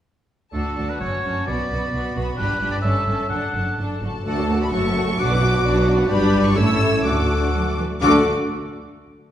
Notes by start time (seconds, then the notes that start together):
0.53 D2 D4 F#4 A4 A5
0.77 D2 D4 F#4 A5
0.89 B4
1.01 F#1 F#2 C#4 F#4 C#5 A5
1.24 F#1 F#2 C#4 F#4 A5
1.47 B1 B2 B3 F#4 D5 B5
1.70 B1 B2 B3 F#4 B5
1.93 B1 B2 B3 F#4 B5
2.15 B1 B2 B3 F#4 B5
2.37 G1 G2 D4 G4 B4 B5
2.61 G1 G2 D4 G4 B5
2.72 D5
2.82 G1 G2 C#4 A4 E5 A5
3.05 G1 G2 C#4 A4 A5
3.29 F#1 F#2 D4 A4 F#5 A5
3.53 F#1 F#2 D4 A4 A5
3.78 F#1 F#2 D4 A4 A5
4.02 F#1 F#2 F#4 A4 A5
4.26 D2 A3 F#4 A4 D5 F#5 A5
4.38 D4 A4 A5
4.49 A3 F#4 D5 F#5
4.61 D4 A4 A5 B5
4.72 F#1 F#2 A3 F#4 A4 C#5 F#5 C#6
4.85 C#4 A4 A5
4.97 A3 F#4 C#5 F#5
5.07 C#4 A4 A5
5.18 B1 B2 F#3 D4 F#4 B4 D5 D6
5.31 B3 D4 B4 F#5
5.43 D4 F#4 D5
5.53 B3 D4 B4 F#5
5.63 B1 B2 D4 F#4 D5
5.76 B3 D4 B4 F#5
5.87 D4 F#4 D5
5.97 B3 D4 B4 F#5
6.09 G1 G2 G3 D4 G4 B4 D5 B5
6.44 C#6
6.55 A1 A2 A3 C#4 E4 A4 C#5 E6
7.04 D2 D3 A3 F#4 A4 D5 F#5 D6
7.54 F#3
7.80 E3
8.03 D2 D3 A3 F#4 A4 D5 F#5 D6